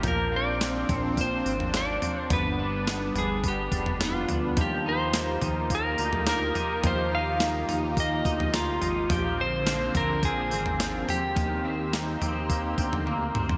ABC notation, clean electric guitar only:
X:1
M:4/4
L:1/8
Q:1/4=106
K:Eb
V:1 name="Clean electric guitar"
F, C F, C F, C F, C | =B, D B, D B, D B, D | F, E B, E B, E B, E | F, E B, E B, E B, E |
F, C F, C F, C F, C | E, C B, C B, C B, C |]